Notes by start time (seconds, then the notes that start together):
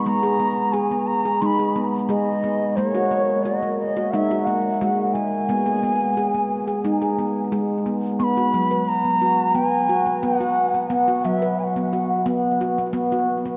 0.06 G#3 B3 A#5
0.23 G#4
0.40 B3
0.72 G#4 G#5
0.91 B3
1.07 A#5
1.25 G#4
1.42 G#3 D#4 C#6
1.46 B5
1.59 G#4
1.76 B3
2.09 G#3 G#4 D#5
2.44 B3
2.76 G#3 A#3 C#5
2.95 F#4
3.11 A#3
3.43 F#4 D#5
3.62 A#3
3.79 D#5
3.97 F#4
4.11 G#3 D#4 F#5
4.15 E5
4.31 F#4
4.45 A#3 F#5
4.81 G#3 F#4
5.13 A#3 G#5
5.49 G#3 B3
5.66 G#4
5.83 B3
6.17 G#4
6.34 B3
6.67 G#4
6.84 G#3 D#4
7.02 G#4
7.19 B3
7.52 G#3 G#4
7.86 B3
8.19 B3 C#6
8.24 B5
8.37 F#4
8.54 F#3 B3
8.71 B4
8.88 A#5
9.04 B3
9.22 F#4
9.55 B3 G#5
9.89 F#4
10.06 B3
10.23 B3 F#5
10.40 F#4
10.74 B3
10.90 B3 F#5
11.08 F#4
11.25 F#3 B3 E5
11.42 B4
11.59 G#5
11.64 F#5
11.76 B3
11.93 F#4
12.26 B3
12.61 F#4
12.78 B3
12.93 B3
13.12 F#4
13.45 B3